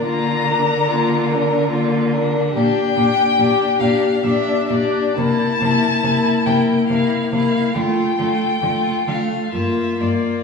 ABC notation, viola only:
X:1
M:3/4
L:1/8
Q:1/4=70
K:Bb
V:1 name="Viola"
B, D B, D B, D | [K:Gdor] D D D D D D | B, B, B, B, B, B, | A, A, A, A, B, B, |]